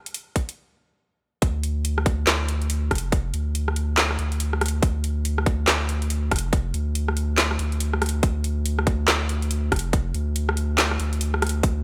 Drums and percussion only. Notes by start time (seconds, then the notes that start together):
0.06 closed hi-hat
0.14 closed hi-hat
0.36 kick, closed hi-hat
0.49 closed hi-hat
1.42 kick, closed hi-hat
1.63 closed hi-hat
1.85 closed hi-hat
1.98 cross-stick
2.06 kick, closed hi-hat
2.27 snare, clap, closed hi-hat
2.49 closed hi-hat
2.62 closed hi-hat
2.70 closed hi-hat
2.91 kick, cross-stick, closed hi-hat
2.95 closed hi-hat
2.98 closed hi-hat
3.12 kick, closed hi-hat
3.34 closed hi-hat
3.55 closed hi-hat
3.68 cross-stick
3.76 closed hi-hat
3.98 snare, clap, closed hi-hat
4.11 cross-stick
4.19 closed hi-hat
4.32 closed hi-hat
4.40 closed hi-hat
4.53 cross-stick
4.61 cross-stick, closed hi-hat
4.66 closed hi-hat
4.68 closed hi-hat
4.83 kick, closed hi-hat
5.04 closed hi-hat
5.25 closed hi-hat
5.38 cross-stick
5.46 kick, closed hi-hat
5.68 snare, clap, closed hi-hat
5.89 closed hi-hat
6.02 closed hi-hat
6.10 closed hi-hat
6.31 kick, cross-stick, closed hi-hat
6.36 closed hi-hat
6.39 closed hi-hat
6.53 kick, closed hi-hat
6.74 closed hi-hat
6.95 closed hi-hat
7.08 cross-stick
7.17 closed hi-hat
7.38 snare, clap, closed hi-hat
7.51 cross-stick
7.59 closed hi-hat
7.72 closed hi-hat
7.80 closed hi-hat
7.93 cross-stick
8.02 cross-stick, closed hi-hat
8.06 closed hi-hat
8.09 closed hi-hat
8.23 kick, closed hi-hat
8.44 closed hi-hat
8.66 closed hi-hat
8.79 cross-stick
8.87 kick, closed hi-hat
9.08 snare, clap, closed hi-hat
9.29 closed hi-hat
9.42 closed hi-hat
9.51 closed hi-hat
9.72 kick, cross-stick, closed hi-hat
9.76 closed hi-hat
9.79 closed hi-hat
9.93 kick, closed hi-hat
10.14 closed hi-hat
10.36 closed hi-hat
10.49 cross-stick
10.57 closed hi-hat
10.78 snare, clap, closed hi-hat
10.91 cross-stick
11.00 closed hi-hat
11.13 closed hi-hat
11.21 closed hi-hat
11.34 cross-stick
11.42 cross-stick, closed hi-hat
11.47 closed hi-hat
11.49 closed hi-hat
11.63 kick, closed hi-hat